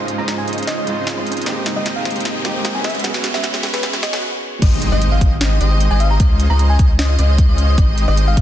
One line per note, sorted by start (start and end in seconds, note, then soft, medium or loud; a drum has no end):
0.00 1.45 C#3 medium
0.00 0.16 G#3 medium
0.00 0.84 G#3 medium
0.00 1.43 G#3 medium
0.00 0.16 C#4 medium
0.00 0.85 D#4 medium
0.00 1.45 D#4 medium
0.00 0.16 F4 medium
0.00 0.86 F4 medium
0.00 1.45 F4 medium
0.00 0.16 C5 medium
0.00 0.84 C5 medium
0.00 2.80 C5 medium
0.00 0.16 D#5 medium
0.00 riser medium
0.08 closed hi-hat medium
0.18 0.45 G#3 medium
0.18 0.45 C#4 medium
0.18 0.45 F4 medium
0.18 0.45 C5 medium
0.18 0.45 D#5 medium
0.18 0.24 A#5 medium
0.28 snare medium
0.28 closed hi-hat medium
0.38 0.47 G#5 medium
0.48 0.85 G#3 medium
0.48 0.85 C#4 medium
0.48 0.85 F4 medium
0.48 0.85 C5 medium
0.48 0.85 D#5 medium
0.48 closed hi-hat soft
0.53 closed hi-hat medium
0.58 closed hi-hat soft
0.63 closed hi-hat medium
0.67 0.74 D#5 medium
0.67 snare medium
0.67 closed hi-hat medium
0.78 0.84 D#5 medium
0.85 1.43 G#3 medium
0.85 1.15 G#3 medium
0.85 1.44 C4 medium
0.85 1.15 C#4 medium
0.85 1.44 D#4 medium
0.85 1.15 F4 medium
0.85 1.15 C5 medium
0.85 1.15 D#5 medium
0.85 closed hi-hat medium
0.89 1.45 F4 medium
1.07 snare medium
1.07 closed hi-hat medium
1.17 1.44 G#3 medium
1.17 1.44 C#4 medium
1.17 1.44 F4 medium
1.17 1.44 C5 medium
1.17 1.44 D#5 medium
1.27 closed hi-hat soft
1.32 closed hi-hat medium
1.37 closed hi-hat soft
1.42 2.42 A#3 medium
1.42 2.42 C4 medium
1.42 closed hi-hat medium
1.46 2.83 G#2 medium
1.46 4.20 G#3 medium
1.46 1.74 G#3 medium
1.46 2.83 A#3 medium
1.46 1.74 D#4 medium
1.46 2.43 D#4 medium
1.46 2.83 G4 medium
1.46 1.74 G4 medium
1.46 2.44 G4 loud
1.46 1.74 C5 medium
1.46 1.74 D#5 medium
1.46 snare medium
1.46 closed hi-hat medium
1.66 snare medium
1.66 closed hi-hat medium
1.76 2.03 G#3 medium
1.76 2.03 D#4 medium
1.76 2.03 G4 medium
1.76 2.03 C5 medium
1.76 1.85 D#5 medium
1.76 2.03 D#5 medium
1.86 snare medium
1.86 closed hi-hat medium
1.96 2.25 F5 medium
2.05 2.43 G#3 medium
2.05 2.43 D#4 medium
2.05 2.43 G4 medium
2.05 2.43 C5 medium
2.05 2.43 D#5 medium
2.05 snare medium
2.05 closed hi-hat soft
2.11 closed hi-hat medium
2.16 closed hi-hat soft
2.20 closed hi-hat medium
2.25 snare medium
2.25 closed hi-hat medium
2.44 2.73 G#3 medium
2.44 2.83 A#3 medium
2.44 2.83 C4 medium
2.44 2.73 D#4 medium
2.44 2.83 D#4 medium
2.44 2.73 G4 medium
2.44 2.84 G4 loud
2.44 2.73 C5 medium
2.44 2.73 D#5 medium
2.44 snare medium
2.44 closed hi-hat medium
2.65 snare medium
2.65 closed hi-hat medium
2.75 3.02 G#3 medium
2.75 3.02 C#4 medium
2.75 3.02 F#4 medium
2.75 3.02 B4 medium
2.75 3.02 E5 loud
2.75 2.82 G#5 medium
2.84 4.21 E2 medium
2.84 4.21 E3 medium
2.84 4.21 F#4 medium
2.84 4.21 C#5 medium
2.84 2.93 E5 medium
2.84 snare medium
2.84 closed hi-hat soft
2.90 closed hi-hat medium
2.95 closed hi-hat soft
2.99 4.00 B3 medium
2.99 closed hi-hat medium
3.03 3.32 G#3 medium
3.03 4.00 C#4 medium
3.03 3.32 C#4 medium
3.03 3.32 F#4 medium
3.03 4.01 F#4 medium
3.03 4.02 G#4 loud
3.03 3.32 B4 medium
3.03 3.32 E5 medium
3.03 snare medium
3.03 closed hi-hat medium
3.14 snare medium
3.24 snare loud
3.24 closed hi-hat medium
3.34 3.61 G#3 medium
3.34 3.61 C#4 medium
3.34 3.61 F#4 medium
3.34 3.61 B4 medium
3.34 3.43 E5 medium
3.34 3.61 E5 medium
3.34 snare medium
3.44 snare medium
3.44 closed hi-hat medium
3.54 snare medium
3.63 4.01 G#3 medium
3.63 4.01 C#4 medium
3.63 4.01 F#4 medium
3.63 4.01 B4 medium
3.63 4.01 E5 medium
3.63 snare loud
3.63 closed hi-hat soft
3.69 closed hi-hat medium
3.73 3.82 B4 medium
3.73 snare medium
3.73 closed hi-hat soft
3.78 closed hi-hat medium
3.83 snare loud
3.83 closed hi-hat medium
3.93 snare medium
4.03 4.22 D#5 medium
4.03 snare loud
4.03 closed hi-hat medium
4.13 4.23 G#3 medium
4.13 4.23 C#4 medium
4.13 4.23 F#4 medium
4.13 4.23 B4 medium
4.13 4.23 F#5 medium
4.13 snare medium
4.62 4.90 G#1 loud
4.62 4.90 G#3 medium
4.62 4.90 D#4 medium
4.62 4.90 G4 medium
4.62 4.90 C5 medium
4.62 4.90 D#5 medium
4.62 kick loud
4.62 closed hi-hat medium
4.62 crash loud
4.62 impact medium
4.82 closed hi-hat medium
4.92 5.19 G#1 loud
4.92 5.19 G#3 medium
4.92 5.19 D#4 medium
4.92 5.19 G4 medium
4.92 5.19 C5 medium
4.92 5.19 D#5 medium
4.92 5.01 D#5 medium
5.02 closed hi-hat medium
5.12 5.41 F5 medium
5.21 5.59 G#1 loud
5.21 5.59 G#3 medium
5.21 5.58 D#4 medium
5.21 5.59 G4 medium
5.21 5.58 C5 medium
5.21 5.58 D#5 medium
5.21 kick loud
5.21 closed hi-hat medium
5.41 snare loud
5.41 closed hi-hat medium
5.61 5.89 G#1 loud
5.61 5.88 G#3 medium
5.61 5.88 D#4 medium
5.61 5.88 G4 medium
5.61 5.88 C5 medium
5.61 5.88 D#5 loud
5.61 5.88 D#5 medium
5.61 closed hi-hat medium
5.80 closed hi-hat medium
5.91 6.18 G#1 loud
5.91 6.18 G#3 medium
5.91 6.18 D#4 medium
5.91 6.18 G4 medium
5.91 6.18 C5 medium
5.91 6.18 D#5 loud
5.91 6.18 D#5 medium
5.91 5.98 G#5 medium
6.00 6.08 F5 medium
6.00 closed hi-hat medium
6.11 6.19 A#5 medium
6.20 6.48 C#2 loud
6.20 6.48 G#3 medium
6.20 6.48 C#4 medium
6.20 6.48 F4 medium
6.20 6.48 C5 medium
6.20 6.48 D#5 medium
6.20 kick loud
6.20 closed hi-hat medium
6.40 closed hi-hat medium
6.50 6.77 C#2 loud
6.50 6.77 G#3 medium
6.50 6.77 C#4 medium
6.50 6.77 F4 medium
6.50 6.77 C5 medium
6.50 6.77 D#5 medium
6.50 6.56 A#5 medium
6.59 6.66 A#5 medium
6.59 closed hi-hat medium
6.70 6.78 G#5 medium
6.79 7.17 C#2 loud
6.79 7.16 G#3 medium
6.79 7.16 C#4 medium
6.79 7.16 F4 medium
6.79 7.16 C5 medium
6.79 7.16 D#5 medium
6.79 kick loud
6.79 closed hi-hat medium
6.99 7.05 D#5 medium
6.99 snare loud
6.99 closed hi-hat medium
7.09 7.15 D#5 medium
7.19 7.47 C#2 loud
7.19 7.46 G#3 medium
7.19 7.46 C#4 medium
7.19 7.46 F4 medium
7.19 7.46 C5 medium
7.19 7.46 D#5 loud
7.19 7.46 D#5 medium
7.19 closed hi-hat medium
7.38 kick loud
7.38 closed hi-hat medium
7.49 7.76 C#2 loud
7.49 7.76 G#3 medium
7.49 7.76 C#4 medium
7.49 7.76 F4 medium
7.49 7.76 C5 medium
7.49 7.76 D#5 loud
7.58 closed hi-hat medium
7.78 8.06 G#1 loud
7.78 8.05 G#3 medium
7.78 8.05 D#4 medium
7.78 8.05 G4 medium
7.78 8.05 C5 medium
7.78 8.05 D#5 medium
7.78 kick loud
7.78 closed hi-hat medium
7.98 closed hi-hat medium
8.08 8.35 G#1 loud
8.08 8.35 G#3 medium
8.08 8.35 D#4 medium
8.08 8.35 G4 medium
8.08 8.35 C5 medium
8.08 8.35 D#5 medium
8.08 8.17 D#5 medium
8.08 8.35 D#5 medium
8.17 closed hi-hat medium
8.28 8.41 F5 medium
8.37 8.41 G#1 loud
8.37 8.41 G#3 medium
8.37 8.41 D#4 medium
8.37 8.41 G4 medium
8.37 8.41 C5 medium
8.37 8.41 D#5 medium
8.37 kick loud
8.37 closed hi-hat medium